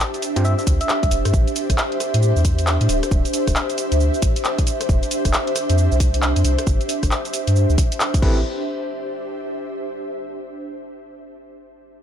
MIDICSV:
0, 0, Header, 1, 6, 480
1, 0, Start_track
1, 0, Tempo, 444444
1, 1443, Time_signature, 4, 2, 24, 8
1, 12990, End_track
2, 0, Start_track
2, 0, Title_t, "Soft synth lead"
2, 0, Program_c, 0, 80
2, 482, Note_on_c, 0, 76, 90
2, 579, Note_off_c, 0, 76, 0
2, 631, Note_on_c, 0, 76, 80
2, 689, Note_off_c, 0, 76, 0
2, 872, Note_on_c, 0, 76, 94
2, 1442, Note_off_c, 0, 76, 0
2, 12990, End_track
3, 0, Start_track
3, 0, Title_t, "Ambient pad"
3, 0, Program_c, 1, 92
3, 0, Note_on_c, 1, 62, 93
3, 0, Note_on_c, 1, 67, 80
3, 0, Note_on_c, 1, 72, 93
3, 0, Note_on_c, 1, 76, 91
3, 8866, Note_off_c, 1, 62, 0
3, 8879, Note_on_c, 1, 62, 80
3, 8882, Note_off_c, 1, 72, 0
3, 8883, Note_off_c, 1, 67, 0
3, 8883, Note_off_c, 1, 76, 0
3, 8971, Note_on_c, 1, 67, 82
3, 9290, Note_on_c, 1, 72, 80
3, 9342, Note_on_c, 1, 76, 80
3, 10758, Note_off_c, 1, 62, 0
3, 10758, Note_off_c, 1, 67, 0
3, 10998, Note_off_c, 1, 76, 0
3, 10999, Note_off_c, 1, 72, 0
3, 12990, End_track
4, 0, Start_track
4, 0, Title_t, "Tine electric piano"
4, 0, Program_c, 2, 4
4, 393, Note_on_c, 2, 60, 74
4, 393, Note_on_c, 2, 62, 71
4, 393, Note_on_c, 2, 65, 72
4, 393, Note_on_c, 2, 67, 74
4, 393, Note_on_c, 2, 72, 87
4, 571, Note_off_c, 2, 60, 0
4, 571, Note_off_c, 2, 62, 0
4, 571, Note_off_c, 2, 67, 0
4, 571, Note_off_c, 2, 72, 0
4, 572, Note_off_c, 2, 65, 0
4, 8882, Note_on_c, 2, 60, 80
4, 8882, Note_on_c, 2, 64, 77
4, 8882, Note_on_c, 2, 67, 74
4, 8882, Note_on_c, 2, 69, 80
4, 8882, Note_on_c, 2, 71, 90
4, 9072, Note_off_c, 2, 60, 0
4, 9072, Note_off_c, 2, 64, 0
4, 9072, Note_off_c, 2, 67, 0
4, 9072, Note_off_c, 2, 69, 0
4, 9072, Note_off_c, 2, 71, 0
4, 12990, End_track
5, 0, Start_track
5, 0, Title_t, "Sub bass"
5, 0, Program_c, 3, 38
5, 393, Note_on_c, 3, 43, 90
5, 593, Note_off_c, 3, 43, 0
5, 723, Note_on_c, 3, 38, 102
5, 853, Note_off_c, 3, 38, 0
5, 1113, Note_on_c, 3, 36, 91
5, 1190, Note_off_c, 3, 36, 0
5, 1203, Note_on_c, 3, 29, 90
5, 1333, Note_off_c, 3, 29, 0
5, 1353, Note_on_c, 3, 43, 99
5, 1431, Note_off_c, 3, 43, 0
5, 1442, Note_on_c, 3, 33, 97
5, 1573, Note_off_c, 3, 33, 0
5, 1833, Note_on_c, 3, 33, 99
5, 1910, Note_off_c, 3, 33, 0
5, 2312, Note_on_c, 3, 45, 94
5, 2513, Note_off_c, 3, 45, 0
5, 2552, Note_on_c, 3, 40, 100
5, 3001, Note_off_c, 3, 40, 0
5, 3032, Note_on_c, 3, 45, 107
5, 3110, Note_off_c, 3, 45, 0
5, 3122, Note_on_c, 3, 26, 91
5, 3253, Note_off_c, 3, 26, 0
5, 3362, Note_on_c, 3, 26, 95
5, 3493, Note_off_c, 3, 26, 0
5, 3752, Note_on_c, 3, 26, 102
5, 3830, Note_off_c, 3, 26, 0
5, 4231, Note_on_c, 3, 38, 90
5, 4432, Note_off_c, 3, 38, 0
5, 4562, Note_on_c, 3, 33, 97
5, 4693, Note_off_c, 3, 33, 0
5, 5281, Note_on_c, 3, 29, 94
5, 5412, Note_off_c, 3, 29, 0
5, 5672, Note_on_c, 3, 29, 103
5, 5750, Note_off_c, 3, 29, 0
5, 6153, Note_on_c, 3, 41, 90
5, 6353, Note_off_c, 3, 41, 0
5, 6392, Note_on_c, 3, 36, 99
5, 6841, Note_off_c, 3, 36, 0
5, 6872, Note_on_c, 3, 41, 102
5, 6950, Note_off_c, 3, 41, 0
5, 6961, Note_on_c, 3, 36, 90
5, 7092, Note_off_c, 3, 36, 0
5, 7202, Note_on_c, 3, 31, 100
5, 7333, Note_off_c, 3, 31, 0
5, 7592, Note_on_c, 3, 31, 101
5, 7670, Note_off_c, 3, 31, 0
5, 8072, Note_on_c, 3, 43, 89
5, 8273, Note_off_c, 3, 43, 0
5, 8312, Note_on_c, 3, 38, 102
5, 8390, Note_off_c, 3, 38, 0
5, 8882, Note_on_c, 3, 33, 95
5, 9106, Note_off_c, 3, 33, 0
5, 12990, End_track
6, 0, Start_track
6, 0, Title_t, "Drums"
6, 2, Note_on_c, 9, 39, 127
6, 2, Note_on_c, 9, 82, 45
6, 110, Note_off_c, 9, 39, 0
6, 110, Note_off_c, 9, 82, 0
6, 152, Note_on_c, 9, 42, 34
6, 152, Note_on_c, 9, 82, 30
6, 242, Note_off_c, 9, 82, 0
6, 242, Note_on_c, 9, 46, 96
6, 242, Note_on_c, 9, 82, 72
6, 260, Note_off_c, 9, 42, 0
6, 350, Note_off_c, 9, 46, 0
6, 350, Note_off_c, 9, 82, 0
6, 393, Note_on_c, 9, 42, 67
6, 393, Note_on_c, 9, 82, 32
6, 482, Note_off_c, 9, 82, 0
6, 482, Note_on_c, 9, 82, 43
6, 501, Note_off_c, 9, 42, 0
6, 590, Note_off_c, 9, 82, 0
6, 633, Note_on_c, 9, 82, 31
6, 722, Note_off_c, 9, 82, 0
6, 722, Note_on_c, 9, 36, 104
6, 722, Note_on_c, 9, 46, 99
6, 722, Note_on_c, 9, 82, 74
6, 830, Note_off_c, 9, 36, 0
6, 830, Note_off_c, 9, 46, 0
6, 830, Note_off_c, 9, 82, 0
6, 873, Note_on_c, 9, 42, 65
6, 873, Note_on_c, 9, 82, 31
6, 963, Note_off_c, 9, 82, 0
6, 963, Note_on_c, 9, 39, 121
6, 963, Note_on_c, 9, 82, 43
6, 981, Note_off_c, 9, 42, 0
6, 1071, Note_off_c, 9, 39, 0
6, 1071, Note_off_c, 9, 82, 0
6, 1113, Note_on_c, 9, 36, 104
6, 1113, Note_on_c, 9, 42, 51
6, 1113, Note_on_c, 9, 82, 31
6, 1202, Note_off_c, 9, 82, 0
6, 1202, Note_on_c, 9, 46, 100
6, 1202, Note_on_c, 9, 82, 73
6, 1221, Note_off_c, 9, 36, 0
6, 1221, Note_off_c, 9, 42, 0
6, 1310, Note_off_c, 9, 46, 0
6, 1310, Note_off_c, 9, 82, 0
6, 1353, Note_on_c, 9, 37, 70
6, 1353, Note_on_c, 9, 42, 62
6, 1353, Note_on_c, 9, 82, 32
6, 1442, Note_on_c, 9, 36, 117
6, 1443, Note_off_c, 9, 82, 0
6, 1443, Note_on_c, 9, 82, 45
6, 1461, Note_off_c, 9, 37, 0
6, 1461, Note_off_c, 9, 42, 0
6, 1550, Note_off_c, 9, 36, 0
6, 1551, Note_off_c, 9, 82, 0
6, 1593, Note_on_c, 9, 42, 36
6, 1593, Note_on_c, 9, 82, 33
6, 1683, Note_off_c, 9, 82, 0
6, 1683, Note_on_c, 9, 46, 98
6, 1683, Note_on_c, 9, 82, 75
6, 1701, Note_off_c, 9, 42, 0
6, 1791, Note_off_c, 9, 46, 0
6, 1791, Note_off_c, 9, 82, 0
6, 1833, Note_on_c, 9, 36, 62
6, 1833, Note_on_c, 9, 37, 51
6, 1833, Note_on_c, 9, 42, 67
6, 1833, Note_on_c, 9, 82, 33
6, 1923, Note_off_c, 9, 82, 0
6, 1923, Note_on_c, 9, 39, 125
6, 1923, Note_on_c, 9, 82, 45
6, 1941, Note_off_c, 9, 36, 0
6, 1941, Note_off_c, 9, 37, 0
6, 1941, Note_off_c, 9, 42, 0
6, 2031, Note_off_c, 9, 39, 0
6, 2031, Note_off_c, 9, 82, 0
6, 2073, Note_on_c, 9, 42, 36
6, 2163, Note_on_c, 9, 37, 49
6, 2163, Note_on_c, 9, 46, 97
6, 2163, Note_on_c, 9, 82, 75
6, 2181, Note_off_c, 9, 42, 0
6, 2271, Note_off_c, 9, 37, 0
6, 2271, Note_off_c, 9, 46, 0
6, 2271, Note_off_c, 9, 82, 0
6, 2313, Note_on_c, 9, 42, 68
6, 2313, Note_on_c, 9, 82, 34
6, 2403, Note_off_c, 9, 82, 0
6, 2403, Note_on_c, 9, 82, 45
6, 2421, Note_off_c, 9, 42, 0
6, 2511, Note_off_c, 9, 82, 0
6, 2553, Note_on_c, 9, 82, 30
6, 2643, Note_off_c, 9, 82, 0
6, 2643, Note_on_c, 9, 36, 105
6, 2643, Note_on_c, 9, 46, 100
6, 2643, Note_on_c, 9, 82, 78
6, 2751, Note_off_c, 9, 36, 0
6, 2751, Note_off_c, 9, 46, 0
6, 2751, Note_off_c, 9, 82, 0
6, 2793, Note_on_c, 9, 42, 65
6, 2793, Note_on_c, 9, 82, 34
6, 2883, Note_off_c, 9, 82, 0
6, 2883, Note_on_c, 9, 39, 117
6, 2883, Note_on_c, 9, 82, 45
6, 2901, Note_off_c, 9, 42, 0
6, 2991, Note_off_c, 9, 39, 0
6, 2991, Note_off_c, 9, 82, 0
6, 3034, Note_on_c, 9, 42, 53
6, 3034, Note_on_c, 9, 82, 32
6, 3122, Note_off_c, 9, 82, 0
6, 3122, Note_on_c, 9, 46, 103
6, 3122, Note_on_c, 9, 82, 78
6, 3142, Note_off_c, 9, 42, 0
6, 3230, Note_off_c, 9, 46, 0
6, 3230, Note_off_c, 9, 82, 0
6, 3272, Note_on_c, 9, 37, 64
6, 3272, Note_on_c, 9, 42, 66
6, 3272, Note_on_c, 9, 82, 34
6, 3362, Note_off_c, 9, 82, 0
6, 3362, Note_on_c, 9, 36, 114
6, 3362, Note_on_c, 9, 82, 43
6, 3380, Note_off_c, 9, 37, 0
6, 3380, Note_off_c, 9, 42, 0
6, 3470, Note_off_c, 9, 36, 0
6, 3470, Note_off_c, 9, 82, 0
6, 3512, Note_on_c, 9, 42, 40
6, 3512, Note_on_c, 9, 82, 33
6, 3602, Note_off_c, 9, 82, 0
6, 3602, Note_on_c, 9, 46, 101
6, 3602, Note_on_c, 9, 82, 73
6, 3620, Note_off_c, 9, 42, 0
6, 3710, Note_off_c, 9, 46, 0
6, 3710, Note_off_c, 9, 82, 0
6, 3753, Note_on_c, 9, 36, 58
6, 3753, Note_on_c, 9, 37, 49
6, 3753, Note_on_c, 9, 46, 60
6, 3753, Note_on_c, 9, 82, 34
6, 3842, Note_off_c, 9, 82, 0
6, 3842, Note_on_c, 9, 39, 115
6, 3842, Note_on_c, 9, 82, 46
6, 3861, Note_off_c, 9, 36, 0
6, 3861, Note_off_c, 9, 37, 0
6, 3861, Note_off_c, 9, 46, 0
6, 3950, Note_off_c, 9, 39, 0
6, 3950, Note_off_c, 9, 82, 0
6, 3991, Note_on_c, 9, 42, 38
6, 3991, Note_on_c, 9, 82, 29
6, 4081, Note_off_c, 9, 82, 0
6, 4081, Note_on_c, 9, 46, 101
6, 4081, Note_on_c, 9, 82, 74
6, 4099, Note_off_c, 9, 42, 0
6, 4189, Note_off_c, 9, 46, 0
6, 4189, Note_off_c, 9, 82, 0
6, 4232, Note_on_c, 9, 42, 70
6, 4232, Note_on_c, 9, 82, 34
6, 4322, Note_off_c, 9, 82, 0
6, 4322, Note_on_c, 9, 82, 43
6, 4340, Note_off_c, 9, 42, 0
6, 4430, Note_off_c, 9, 82, 0
6, 4472, Note_on_c, 9, 82, 32
6, 4561, Note_off_c, 9, 82, 0
6, 4561, Note_on_c, 9, 46, 101
6, 4561, Note_on_c, 9, 82, 76
6, 4562, Note_on_c, 9, 36, 96
6, 4669, Note_off_c, 9, 46, 0
6, 4669, Note_off_c, 9, 82, 0
6, 4670, Note_off_c, 9, 36, 0
6, 4712, Note_on_c, 9, 42, 72
6, 4712, Note_on_c, 9, 82, 33
6, 4801, Note_off_c, 9, 82, 0
6, 4801, Note_on_c, 9, 39, 116
6, 4801, Note_on_c, 9, 82, 44
6, 4820, Note_off_c, 9, 42, 0
6, 4909, Note_off_c, 9, 39, 0
6, 4909, Note_off_c, 9, 82, 0
6, 4952, Note_on_c, 9, 36, 99
6, 4952, Note_on_c, 9, 42, 55
6, 4952, Note_on_c, 9, 82, 32
6, 5041, Note_off_c, 9, 82, 0
6, 5041, Note_on_c, 9, 46, 104
6, 5041, Note_on_c, 9, 82, 78
6, 5060, Note_off_c, 9, 36, 0
6, 5060, Note_off_c, 9, 42, 0
6, 5149, Note_off_c, 9, 46, 0
6, 5149, Note_off_c, 9, 82, 0
6, 5191, Note_on_c, 9, 37, 63
6, 5191, Note_on_c, 9, 42, 72
6, 5191, Note_on_c, 9, 82, 35
6, 5281, Note_off_c, 9, 82, 0
6, 5281, Note_on_c, 9, 82, 43
6, 5282, Note_on_c, 9, 36, 115
6, 5299, Note_off_c, 9, 37, 0
6, 5299, Note_off_c, 9, 42, 0
6, 5389, Note_off_c, 9, 82, 0
6, 5390, Note_off_c, 9, 36, 0
6, 5432, Note_on_c, 9, 42, 39
6, 5432, Note_on_c, 9, 82, 29
6, 5521, Note_off_c, 9, 82, 0
6, 5521, Note_on_c, 9, 46, 108
6, 5521, Note_on_c, 9, 82, 73
6, 5540, Note_off_c, 9, 42, 0
6, 5629, Note_off_c, 9, 46, 0
6, 5629, Note_off_c, 9, 82, 0
6, 5671, Note_on_c, 9, 37, 52
6, 5671, Note_on_c, 9, 42, 68
6, 5671, Note_on_c, 9, 82, 32
6, 5672, Note_on_c, 9, 36, 58
6, 5761, Note_off_c, 9, 82, 0
6, 5761, Note_on_c, 9, 39, 118
6, 5761, Note_on_c, 9, 82, 46
6, 5779, Note_off_c, 9, 37, 0
6, 5779, Note_off_c, 9, 42, 0
6, 5780, Note_off_c, 9, 36, 0
6, 5869, Note_off_c, 9, 39, 0
6, 5869, Note_off_c, 9, 82, 0
6, 5912, Note_on_c, 9, 42, 39
6, 6001, Note_on_c, 9, 37, 48
6, 6001, Note_on_c, 9, 46, 109
6, 6001, Note_on_c, 9, 82, 68
6, 6020, Note_off_c, 9, 42, 0
6, 6109, Note_off_c, 9, 37, 0
6, 6109, Note_off_c, 9, 46, 0
6, 6109, Note_off_c, 9, 82, 0
6, 6151, Note_on_c, 9, 42, 70
6, 6151, Note_on_c, 9, 82, 33
6, 6241, Note_off_c, 9, 82, 0
6, 6241, Note_on_c, 9, 82, 44
6, 6259, Note_off_c, 9, 42, 0
6, 6349, Note_off_c, 9, 82, 0
6, 6392, Note_on_c, 9, 82, 32
6, 6482, Note_off_c, 9, 82, 0
6, 6482, Note_on_c, 9, 36, 96
6, 6482, Note_on_c, 9, 46, 112
6, 6482, Note_on_c, 9, 82, 75
6, 6590, Note_off_c, 9, 36, 0
6, 6590, Note_off_c, 9, 46, 0
6, 6590, Note_off_c, 9, 82, 0
6, 6632, Note_on_c, 9, 42, 70
6, 6632, Note_on_c, 9, 82, 32
6, 6722, Note_off_c, 9, 82, 0
6, 6722, Note_on_c, 9, 39, 115
6, 6722, Note_on_c, 9, 82, 45
6, 6740, Note_off_c, 9, 42, 0
6, 6830, Note_off_c, 9, 39, 0
6, 6830, Note_off_c, 9, 82, 0
6, 6872, Note_on_c, 9, 42, 60
6, 6872, Note_on_c, 9, 82, 31
6, 6961, Note_off_c, 9, 82, 0
6, 6961, Note_on_c, 9, 46, 109
6, 6961, Note_on_c, 9, 82, 77
6, 6980, Note_off_c, 9, 42, 0
6, 7069, Note_off_c, 9, 46, 0
6, 7069, Note_off_c, 9, 82, 0
6, 7112, Note_on_c, 9, 37, 64
6, 7112, Note_on_c, 9, 42, 71
6, 7112, Note_on_c, 9, 82, 33
6, 7201, Note_off_c, 9, 82, 0
6, 7201, Note_on_c, 9, 82, 41
6, 7202, Note_on_c, 9, 36, 117
6, 7220, Note_off_c, 9, 37, 0
6, 7220, Note_off_c, 9, 42, 0
6, 7309, Note_off_c, 9, 82, 0
6, 7310, Note_off_c, 9, 36, 0
6, 7352, Note_on_c, 9, 42, 40
6, 7352, Note_on_c, 9, 82, 30
6, 7441, Note_off_c, 9, 82, 0
6, 7441, Note_on_c, 9, 46, 114
6, 7441, Note_on_c, 9, 82, 72
6, 7460, Note_off_c, 9, 42, 0
6, 7549, Note_off_c, 9, 46, 0
6, 7549, Note_off_c, 9, 82, 0
6, 7592, Note_on_c, 9, 36, 60
6, 7592, Note_on_c, 9, 37, 55
6, 7592, Note_on_c, 9, 46, 67
6, 7592, Note_on_c, 9, 82, 30
6, 7682, Note_off_c, 9, 82, 0
6, 7682, Note_on_c, 9, 39, 124
6, 7682, Note_on_c, 9, 82, 43
6, 7700, Note_off_c, 9, 36, 0
6, 7700, Note_off_c, 9, 37, 0
6, 7700, Note_off_c, 9, 46, 0
6, 7790, Note_off_c, 9, 39, 0
6, 7790, Note_off_c, 9, 82, 0
6, 7832, Note_on_c, 9, 42, 37
6, 7832, Note_on_c, 9, 82, 28
6, 7922, Note_off_c, 9, 82, 0
6, 7922, Note_on_c, 9, 46, 100
6, 7922, Note_on_c, 9, 82, 66
6, 7940, Note_off_c, 9, 42, 0
6, 8030, Note_off_c, 9, 46, 0
6, 8030, Note_off_c, 9, 82, 0
6, 8073, Note_on_c, 9, 42, 73
6, 8073, Note_on_c, 9, 82, 32
6, 8163, Note_off_c, 9, 82, 0
6, 8163, Note_on_c, 9, 82, 44
6, 8181, Note_off_c, 9, 42, 0
6, 8271, Note_off_c, 9, 82, 0
6, 8313, Note_on_c, 9, 82, 28
6, 8402, Note_on_c, 9, 36, 99
6, 8403, Note_off_c, 9, 82, 0
6, 8403, Note_on_c, 9, 46, 112
6, 8403, Note_on_c, 9, 82, 69
6, 8510, Note_off_c, 9, 36, 0
6, 8511, Note_off_c, 9, 46, 0
6, 8511, Note_off_c, 9, 82, 0
6, 8553, Note_on_c, 9, 42, 68
6, 8553, Note_on_c, 9, 82, 32
6, 8643, Note_off_c, 9, 82, 0
6, 8643, Note_on_c, 9, 39, 115
6, 8643, Note_on_c, 9, 82, 41
6, 8661, Note_off_c, 9, 42, 0
6, 8751, Note_off_c, 9, 39, 0
6, 8751, Note_off_c, 9, 82, 0
6, 8793, Note_on_c, 9, 36, 98
6, 8793, Note_on_c, 9, 42, 55
6, 8793, Note_on_c, 9, 82, 30
6, 8882, Note_off_c, 9, 36, 0
6, 8882, Note_on_c, 9, 36, 112
6, 8883, Note_on_c, 9, 49, 89
6, 8901, Note_off_c, 9, 42, 0
6, 8901, Note_off_c, 9, 82, 0
6, 8990, Note_off_c, 9, 36, 0
6, 8991, Note_off_c, 9, 49, 0
6, 12990, End_track
0, 0, End_of_file